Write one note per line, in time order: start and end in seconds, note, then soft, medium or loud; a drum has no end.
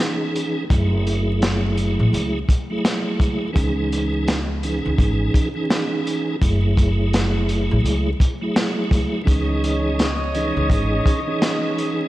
0.00 0.64 E3 loud
0.00 0.64 C#4 medium
0.00 0.65 D#4 medium
0.00 0.65 G#4 loud
0.36 closed hi-hat medium
0.70 1.96 F#1 loud
0.70 2.38 F#3 loud
0.70 2.39 A3 medium
0.70 2.39 E4 medium
0.70 2.40 G#4 loud
0.70 kick loud
0.70 closed hi-hat medium
1.07 closed hi-hat medium
1.42 snare loud
1.42 closed hi-hat medium
1.77 closed hi-hat medium
2.00 2.10 A1 loud
2.13 2.41 C#2 loud
2.13 closed hi-hat medium
2.49 kick loud
2.49 closed hi-hat medium
2.70 3.50 F#3 loud
2.70 3.50 A3 medium
2.70 3.51 E4 medium
2.70 3.51 G#4 loud
2.85 snare loud
2.85 closed hi-hat medium
3.20 3.37 C#2 medium
3.20 kick loud
3.20 closed hi-hat medium
3.53 4.81 C#2 loud
3.53 4.39 E3 loud
3.53 4.39 C#4 medium
3.53 4.40 D#4 medium
3.53 4.40 G#4 loud
3.53 kick loud
3.53 closed hi-hat medium
3.92 closed hi-hat medium
4.28 snare loud
4.28 closed hi-hat medium
4.63 5.48 E3 medium
4.63 5.48 C#4 medium
4.63 5.49 D#4 medium
4.63 5.49 G#4 loud
4.63 closed hi-hat medium
4.85 4.96 C#2 loud
4.98 5.26 G#1 loud
4.98 kick medium
4.98 closed hi-hat medium
5.34 kick loud
5.34 closed hi-hat medium
5.55 6.35 E3 loud
5.55 6.36 C#4 medium
5.55 6.36 D#4 medium
5.55 6.36 G#4 loud
5.70 snare loud
5.70 closed hi-hat medium
6.07 closed hi-hat medium
6.42 7.67 F#1 loud
6.42 8.10 F#3 medium
6.42 8.10 A3 medium
6.42 8.11 E4 medium
6.42 8.11 G#4 loud
6.42 kick loud
6.42 closed hi-hat medium
6.77 kick loud
6.77 closed hi-hat medium
7.13 snare loud
7.13 closed hi-hat medium
7.49 closed hi-hat medium
7.71 7.82 A1 loud
7.84 8.12 C#2 loud
7.84 closed hi-hat medium
8.20 kick loud
8.20 closed hi-hat medium
8.41 9.21 F#3 loud
8.41 9.22 A3 medium
8.41 9.22 E4 medium
8.41 9.22 G#4 loud
8.56 snare loud
8.56 closed hi-hat loud
8.91 9.09 C#2 medium
8.91 kick loud
8.91 closed hi-hat medium
9.24 10.53 C#2 loud
9.24 10.10 E3 loud
9.24 10.11 C#4 medium
9.24 10.11 D#4 medium
9.24 10.11 G#4 loud
9.24 12.08 C#5 medium
9.24 12.08 D#5 medium
9.24 12.08 D#6 medium
9.24 kick loud
9.28 closed hi-hat medium
9.64 closed hi-hat medium
9.99 snare loud
9.99 closed hi-hat medium
10.35 11.19 E3 medium
10.35 11.20 C#4 medium
10.35 11.20 D#4 medium
10.35 11.20 G#4 loud
10.35 closed hi-hat medium
10.57 10.67 C#2 loud
10.70 10.98 G#1 loud
10.70 kick medium
10.70 closed hi-hat medium
11.06 kick loud
11.06 closed hi-hat medium
11.27 12.07 E3 loud
11.27 12.07 C#4 medium
11.27 12.07 D#4 medium
11.27 12.08 G#4 loud
11.42 snare loud
11.42 closed hi-hat loud
11.78 closed hi-hat medium